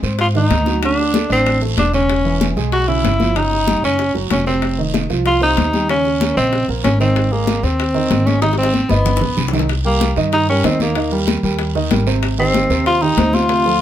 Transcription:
0.03 upright bass G#2, grand piano C4 C5, high bongo, high conga, short guiro
0.19 tenor saxophone F4, high bongo, high conga, long guiro
0.35 grand piano D#3 D#4, tenor saxophone D#4, high bongo, high conga
0.51 upright bass D2, high bongo, low bongo, high conga, short guiro
0.66 grand piano F#3 F#4, high bongo, high conga, short guiro
0.82 grand piano D3 D4, tenor saxophone D4, high bongo, high conga, long guiro
0.98 high bongo, high conga
1.14 grand piano A3 A4, high bongo, high conga, short guiro
1.30 upright bass A1, tenor saxophone C4, grand piano D4 D5, high conga, short guiro
1.46 high bongo, high conga, long guiro
1.62 grand piano A3 A4, high bongo, high conga
1.77 upright bass E1, tenor saxophone D4, high bongo, low bongo, high conga, short guiro
1.93 grand piano C#3 C#4, tenor saxophone C#4, high bongo, short guiro
2.09 high bongo, high conga, long guiro
2.24 grand piano E3 E4, high conga
2.41 high bongo, high conga, short guiro
2.56 upright bass B1, grand piano G#3 G#4, high bongo, high conga, short guiro
2.72 tenor saxophone F#4, high bongo, high conga, long guiro
2.88 grand piano C#3 C#4, tenor saxophone E4, high bongo, high conga
3.04 upright bass G1, high bongo, low bongo, high conga, short guiro
3.20 grand piano F3 F4, high bongo, high conga, short guiro
3.36 grand piano C#3 C#4, tenor saxophone D#4, high bongo, high conga, long guiro
3.52 high bongo, high conga
3.67 grand piano G3 G4, high bongo, high conga, short guiro
3.83 upright bass F#1, grand piano C#4 C#5, tenor saxophone C#4, high conga, short guiro
3.99 high bongo, high conga, long guiro
4.14 upright bass F#1, grand piano F#3 F#4, high bongo, high conga
4.30 upright bass F1, tenor saxophone C#4, high bongo, low bongo, high conga, short guiro
4.47 grand piano C3 C4, tenor saxophone C4, high bongo, short guiro
4.62 high bongo, high conga, long guiro
4.78 grand piano D#3 D#4, high conga
4.94 high bongo, high conga, short guiro
5.10 upright bass C2, grand piano F3 F4, high bongo, high conga, short guiro
5.26 tenor saxophone F4, high bongo, high conga, long guiro
5.41 grand piano C3 C4, tenor saxophone D#4, high bongo, high conga
5.57 upright bass D#2, high bongo, low bongo, high conga, short guiro
5.73 grand piano G3 G4, high bongo, high conga, short guiro
5.89 grand piano C#3 C#4, tenor saxophone C#4, high bongo, high conga, long guiro
6.05 high bongo, high conga
6.21 grand piano A#3 A#4, high bongo, high conga, short guiro
6.37 upright bass A#1, grand piano C#3 D#5, tenor saxophone C4, high conga, short guiro
6.53 high bongo, high conga, long guiro
6.68 upright bass A#1, grand piano A#3 A#4, high bongo, high conga
6.84 upright bass G#1, tenor saxophone C#4, high bongo, low bongo, high conga, short guiro
7.00 grand piano D#3 D#4, tenor saxophone C4, high bongo, short guiro
7.16 high bongo, high conga, long guiro
7.32 grand piano G#3 G#4, tenor saxophone A#3, high conga
7.47 high bongo, high conga, short guiro
7.63 upright bass D#2, grand piano C4 C5, tenor saxophone C4, high bongo, high conga, short guiro
7.79 high bongo, high conga, long guiro
7.94 grand piano D#3 D#4, high bongo, high conga
8.10 upright bass G#1, high bongo, low bongo, high conga, short guiro
8.26 grand piano G#3 G#4, tenor saxophone C#4, high bongo, high conga, short guiro
8.42 grand piano D#3 D#4, tenor saxophone D#4, high bongo, high conga, long guiro
8.53 high bongo
8.58 tenor saxophone C4, high conga
8.63 high bongo
8.73 grand piano C4 C5, high conga, short guiro
8.89 upright bass G1, tenor saxophone B3, grand piano D#4 D#5, high conga, short guiro
9.05 low bongo, low conga, long guiro
9.17 low bongo
9.21 upright bass A#1, grand piano B3 B4, low conga
9.37 upright bass C2, low conga, short guiro
9.48 low bongo
9.53 grand piano D#3 D#4, low conga, short guiro
9.59 low bongo
9.69 high bongo, high conga, long guiro
9.85 grand piano G3 G4 A#4, tenor saxophone A#3, high conga
10.01 high bongo, high conga, short guiro
10.16 upright bass G2, grand piano D#3 D#4 D#5, high bongo, high conga, short guiro
10.32 tenor saxophone D#4, high bongo, high conga, long guiro
10.48 grand piano G3 G4 A#4, tenor saxophone C#4, high bongo, high conga
10.64 upright bass D#2, grand piano D#3 D#4 D#5, tenor saxophone C4, high bongo, low bongo, high conga, short guiro
10.80 tenor saxophone A#3, high bongo, high conga, short guiro
10.95 grand piano D#3 D#4 D#5, high bongo, high conga, long guiro
11.12 grand piano G3 G4 A#4, high bongo, high conga
11.27 high bongo, high conga, short guiro
11.43 upright bass D#2, grand piano G3 G4 A#4, high conga, short guiro
11.59 high bongo, high conga, long guiro
11.75 grand piano D#3 D#4 D#5, high bongo, high conga
11.91 upright bass G#1, grand piano G3 G4 A#4, high bongo, low bongo, high conga, short guiro
12.07 grand piano C3 C4 C5, high bongo, short guiro
12.23 high bongo, high conga, long guiro
12.38 grand piano D#3 D#4 G4, tenor saxophone C4, high conga
12.54 high bongo, high conga, short guiro
12.70 upright bass D#2, grand piano C3 C4 C5, high bongo, high conga, short guiro
12.86 tenor saxophone F4, high bongo, high conga, long guiro
13.02 grand piano D#3 D#4 G4, tenor saxophone D#4, high bongo, high conga
13.17 upright bass D2, grand piano C3 C4 C5, high bongo, low bongo, high conga, short guiro
13.33 tenor saxophone F4, high bongo, high conga, short guiro
13.49 grand piano C3 C4 C5, high bongo, high conga, long guiro
13.65 grand piano F3 F4 A4, high bongo, high conga

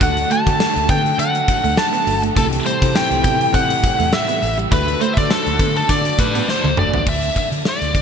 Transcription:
Already playing: analog synth pad D3 F#3 A3 F#4 A4, tine electric piano A4
0.00 fingered electric bass D2, distorted electric guitar D3 A3 D4, tine electric piano D3 A3 D4 F#4 A4, clean electric guitar D4, lead electric guitar F#5, synth bell F#6, kick, closed hi-hat
0.17 muted clean electric guitar stroke, closed hi-hat
0.30 clean electric guitar A3, lead electric guitar A5, synth bell A6, closed hi-hat
0.47 fingered electric bass D3, tine electric piano A3 D4 F#4 A4, kick, closed hi-hat
0.60 snare, tambourine
0.76 fingered electric bass D2, closed hi-hat
0.89 fingered electric bass D3, clean electric guitar B3, lead electric guitar G5, synth bell G6, kick, closed hi-hat
1.06 closed hi-hat
1.18 fingered electric bass D3, distorted electric guitar D3 A3 D4, clean electric guitar D4, lead electric guitar F#5, synth bell F#6, closed hi-hat
1.35 muted clean electric guitar stroke, closed hi-hat
1.48 kick, closed hi-hat
1.64 fingered electric bass D2, clean electric guitar A3, closed hi-hat
1.77 distorted electric guitar D3 A3 D4, lead electric guitar A5, synth bell A6, snare, tambourine
1.93 clean electric guitar B3, closed hi-hat
2.06 fingered electric bass G1, tine electric piano A3 D4 F#4 A4, muted clean electric guitar stroke, open hi-hat
2.22 clean electric guitar A3, closed hi-hat
2.35 fingered electric bass C2, distorted electric guitar A2 E3 A3, analog synth pad C3 G3 A3 E4 G4, tine electric piano C3 C4 E4 G4 A4, clean electric guitar A3, lead electric guitar A4, synth bell A5, kick, closed hi-hat
2.51 muted clean electric guitar stroke, closed hi-hat
2.65 clean electric guitar G3, lead electric guitar C5, synth bell C6, closed hi-hat
2.82 fingered electric bass C3, tine electric piano C4 E4 G4 A4, kick, closed hi-hat
2.95 lead electric guitar G5, synth bell G6, snare, tambourine
3.11 fingered electric bass C2, tine electric piano C4 E4 G4 A4, closed hi-hat
3.23 fingered electric bass C3, clean electric guitar B3, kick, closed hi-hat
3.41 closed hi-hat
3.53 distorted electric guitar A2 E3 A3, fingered electric bass C3, clean electric guitar C4, lead electric guitar F#5, synth bell F#6, kick, closed hi-hat
3.69 muted clean electric guitar stroke, closed hi-hat
3.84 kick, closed hi-hat
3.99 fingered electric bass E2, clean electric guitar A3, closed hi-hat
4.12 distorted electric guitar A2 E3 A3, lead electric guitar E5, synth bell E6, snare, tambourine
4.28 clean electric guitar B3, closed hi-hat
4.42 fingered electric bass A1, muted clean electric guitar stroke, open hi-hat
4.58 clean electric guitar G3, closed hi-hat
4.71 fingered electric bass D2, distorted electric guitar D3 A3 D4, tine electric piano D3 A3 D4 F#4 A4, analog synth pad D3 F#3 F#4 A4, clean electric guitar D4, lead electric guitar B4, synth bell B5, kick, closed hi-hat
4.87 muted clean electric guitar stroke, closed hi-hat
5.00 clean electric guitar A3, lead electric guitar C5, synth bell C6, closed hi-hat
5.13 lead electric guitar E5, synth bell E6
5.17 fingered electric bass D3, tine electric piano A3 D4 F#4 A4, lead electric guitar D5, synth bell D6, kick, closed hi-hat
5.30 lead electric guitar A4, synth bell A5, snare, tambourine
5.46 fingered electric bass D2, closed hi-hat
5.59 fingered electric bass D3, distorted electric guitar A3 D4, clean electric guitar B3, kick, closed hi-hat
5.76 lead electric guitar A4, synth bell A5, closed hi-hat
5.88 distorted electric guitar D3 A3 D4, fingered electric bass D3, clean electric guitar D4, lead electric guitar D5, synth bell D6, kick, closed hi-hat
6.05 muted clean electric guitar stroke, closed hi-hat
6.19 fingered electric bass A2, lead electric guitar B4, kick, closed hi-hat
6.35 clean electric guitar B3, closed hi-hat
6.47 distorted electric guitar D3 A3 D4, lead electric guitar C5, snare
6.64 fingered electric bass D2, clean electric guitar A3, high tom
6.77 fingered electric bass G1, tine electric piano A3 D4 F#4 A4, lead electric guitar D5, muted clean electric guitar stroke, mid tom
6.93 fingered electric bass A1, clean electric guitar B3, floor tom
7.06 fingered electric bass D2, lead electric guitar E5, kick, crash
7.22 closed hi-hat
7.36 lead electric guitar E5, kick, closed hi-hat
7.52 fingered electric bass D3, closed hi-hat
7.65 lead electric guitar D5, snare
7.81 fingered electric bass D2, closed hi-hat
7.95 fingered electric bass D3, kick, closed hi-hat

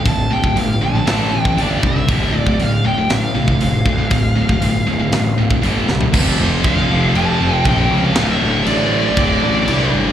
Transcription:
0.05 picked electric bass D1, distorted electric guitar D2 A2, lead electric guitar A5, kick, open hi-hat
0.31 picked electric bass D1, distorted electric guitar D2 A2, lead electric guitar G5
0.44 distorted electric guitar D2 A2, kick
0.56 picked electric bass G1, distorted electric guitar D2 A2, lead electric guitar F5, open hi-hat
0.82 picked electric bass A#1, distorted electric guitar D2 A2, lead electric guitar A5
0.95 distorted electric guitar D2 A2
1.07 picked electric bass A1, distorted electric guitar A2 E3 A3, snare, open hi-hat
1.32 picked electric bass A1, distorted electric guitar A2 E3
1.41 lead electric guitar G5
1.45 distorted electric guitar A2 E3, kick
1.57 picked electric bass G1, distorted electric guitar G2 D3 G3, lead electric guitar D5, open hi-hat
1.83 picked electric bass C2, distorted electric guitar G2 D3, lead electric guitar E5, kick
1.96 distorted electric guitar G2 D3
2.08 picked electric bass D1, distorted electric guitar D2 A2 D3, kick, open hi-hat
2.34 picked electric bass D1, distorted electric guitar D2 A2, lead electric guitar D5
2.46 distorted electric guitar D2 A2, kick
2.59 picked electric bass D1, distorted electric guitar D2 A2, lead electric guitar F5, open hi-hat
2.84 picked electric bass D1, distorted electric guitar D2 A2, lead electric guitar G5
2.98 distorted electric guitar D2 A2
3.09 picked electric bass A1, distorted electric guitar D2 A2, lead electric guitar F5, snare, open hi-hat
3.35 picked electric bass C2, distorted electric guitar D2 A2
3.48 distorted electric guitar D2 A2, kick
3.61 picked electric bass F1, distorted electric guitar D2 A2, open hi-hat
3.85 picked electric bass D2, distorted electric guitar D2 A2, kick
3.99 distorted electric guitar D2 A2
4.10 picked electric bass D1, distorted electric guitar D2 A2, kick, open hi-hat
4.36 picked electric bass D1, distorted electric guitar D2 A2
4.49 distorted electric guitar D2 A2, kick
4.61 picked electric bass G1, distorted electric guitar D2 A2, open hi-hat
4.86 picked electric bass D1, distorted electric guitar D2 A2
5.00 distorted electric guitar D2 A2
5.12 picked electric bass A1, distorted electric guitar D2 A2, snare, open hi-hat
5.38 picked electric bass D1, distorted electric guitar D2 A2
5.50 distorted electric guitar D2 A2, kick
5.62 picked electric bass G1, distorted electric guitar G2 D3 G3, open hi-hat
5.88 picked electric bass C2, distorted electric guitar G2 D3, snare
6.01 distorted electric guitar G2 D3, floor tom
6.12 picked electric bass F1, distorted electric guitar F2 C3 F3, kick, crash
6.40 picked electric bass F1
6.64 picked electric bass D2, lead electric guitar F5, kick, crash
6.89 picked electric bass F1, distorted electric guitar F2 C3 F3
7.15 picked electric bass F1, distorted electric guitar F2 C3 F3, lead electric guitar A5, crash
7.41 picked electric bass F1
7.64 picked electric bass A#1, distorted electric guitar F2 C3, lead electric guitar G5, kick, crash
7.68 distorted electric guitar F3
7.91 picked electric bass C#2
8.05 lead electric guitar F5
8.15 picked electric bass D1, distorted electric guitar D2 A2, lead electric guitar F5, snare, crash
8.19 distorted electric guitar D3
8.31 lead electric guitar E5
8.42 picked electric bass D1
8.66 picked electric bass A1, lead electric guitar D5, crash
8.91 distorted electric guitar D2 A2 D3
9.17 picked electric bass D1, distorted electric guitar D2 A2 D3, lead electric guitar D5, kick, crash
9.43 picked electric bass A1
9.66 picked electric bass C2, distorted electric guitar D2 A2, crash
9.70 distorted electric guitar D3
9.93 picked electric bass G1

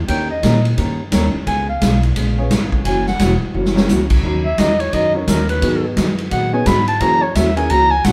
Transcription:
0.08 upright bass D#2, hollow-body jazz guitar D#3 A#3 C#4 G4 A#4, upright piano C#4 D#4 G4 A#4 C#5, clarinet G5, kick, ride
0.31 clarinet D#5
0.43 upright bass A#2, hollow-body jazz guitar D#3 A#3 C#4 G4 A#4, kick, snare, hi-hat pedal, ride
0.65 ride
0.77 upright bass G2, hollow-body jazz guitar D#3 A#3 C#4 G4 A#4, kick, ride
1.11 upright bass D#2, hollow-body jazz guitar D#3 A#3 C#4 G4 A#4, upright piano C#4 D#4 G4 A#4 C#5, kick, snare, hi-hat pedal, ride
1.34 muted upright bass stroke
1.46 upright bass C#2, hollow-body jazz guitar C#3 G#3 B3 F4 G#4, clarinet G#5, kick, ride
1.69 clarinet F5
1.81 upright bass B1, hollow-body jazz guitar C#3 G#3 B3 F4 G#4, kick, snare, hi-hat pedal, ride
2.03 ride
2.16 upright bass A#1, hollow-body jazz guitar C#3 G#3 B3 F4 G#4, kick, ride
2.38 upright piano C#4 F4 G#4 B4 C#5
2.50 upright bass G#1, hollow-body jazz guitar C#3 G#3 B3 F4 G#4, kick, snare, hi-hat pedal, ride
2.72 kick
2.85 upright bass F#1, hollow-body jazz guitar C#3 E3 A#3 C#4 F#4, clarinet G#5, kick, ride
3.07 clarinet F#5, snare
3.19 upright bass E1, hollow-body jazz guitar C#3 E3 A#3 C#4 F#4, kick, snare, hi-hat pedal, ride
3.42 muted upright bass stroke
3.54 upright bass F#1, hollow-body jazz guitar C#3 E3 A#3 C#4 F#4
3.66 snare
3.75 upright piano C#4 E4 F#4 A#4 C#5, snare
3.89 upright bass C#2, hollow-body jazz guitar C#3 E3 A#3 C#4 F#4, snare, hi-hat pedal
4.10 kick, crash
4.23 upright bass D#2, hollow-body jazz guitar D#3 F#3 C#4 D#4 A#4, kick
4.45 clarinet E5
4.58 upright bass E2, hollow-body jazz guitar D#3 F#3 C#4 D#4 A#4, clarinet D#5, kick, snare, hi-hat pedal, ride
4.80 clarinet C#5, ride
4.93 upright bass F#2, hollow-body jazz guitar D#3 F#3 C#4 D#4 A#4, clarinet D#5, kick, ride
5.15 upright piano C#4 D#4 F#4 A#4 C#5, clarinet F#4
5.28 upright bass D#2, hollow-body jazz guitar D#3 F#3 C#4 D#4 A#4, clarinet A#4, kick, snare, hi-hat pedal, ride
5.49 clarinet B4, ride
5.62 upright bass G#2, hollow-body jazz guitar D#3 F#3 B3 D#4 G#4, upright piano B3 D#4 F#4 G#4 B4, kick, ride
5.97 upright bass F#2, hollow-body jazz guitar D#3 F#3 B3 D#4 G#4, kick, snare, hi-hat pedal, ride
6.18 ride
6.31 upright bass A#2, hollow-body jazz guitar D#3 F#3 B3 D#4 G#4, clarinet F#5, kick, ride
6.53 upright piano B3 D#4 F#4 G#4 C#5, clarinet G#5
6.66 upright bass G#2, hollow-body jazz guitar D#3 F#3 B3 D#4 G#4, clarinet B5, kick, snare, hi-hat pedal, ride
6.88 clarinet A5, ride
7.00 upright bass F#2, hollow-body jazz guitar C#3 E3 A#3 C#4 F#4, upright piano C#4 E4 F#4 G#4 A#4, clarinet A#5, kick, ride
7.22 clarinet C#5
7.35 upright bass D#2, hollow-body jazz guitar C#3 E3 A#3 C#4 F#4, clarinet E5, kick, snare, hi-hat pedal, ride
7.56 upright piano C#4 E4 F#4 G#4 A#4, clarinet G#5, ride
7.69 upright bass C#2, hollow-body jazz guitar C#3 E3 A#3 C#4 F#4, clarinet A#5, kick, ride
7.91 clarinet G#5
8.04 upright bass A#1, hollow-body jazz guitar C#3 E3 A#3 C#4 F#4, clarinet F#5, kick, snare, hi-hat pedal, ride

